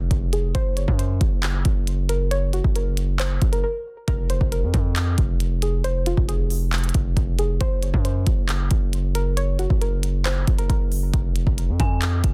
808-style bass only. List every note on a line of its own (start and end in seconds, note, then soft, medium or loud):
0.11 0.53 F1 loud
0.55 0.87 F#1 loud
0.88 1.20 F#2 loud
1.21 1.63 F#1 loud
1.65 2.60 F#1 loud
2.64 3.39 F#1 loud
3.42 3.64 F#1 loud
4.08 4.40 F1 loud
4.41 4.64 F1 loud
4.63 4.73 F2 loud
4.74 5.16 F2 loud
5.18 6.13 F1 loud
6.17 6.91 F1 loud
6.95 7.16 F1 loud
7.17 7.59 F1 loud
7.61 7.92 F#1 loud
7.94 8.25 F#2 loud
8.27 8.69 F#1 loud
8.71 9.66 F#1 loud
9.70 10.44 F#1 loud
10.48 10.69 F#1 loud
10.69 11.12 F#1 loud
11.14 11.45 F1 loud
11.47 11.70 F1 loud
11.69 11.79 F2 loud
11.80 12.22 F2 loud
12.24 12.34 F1 loud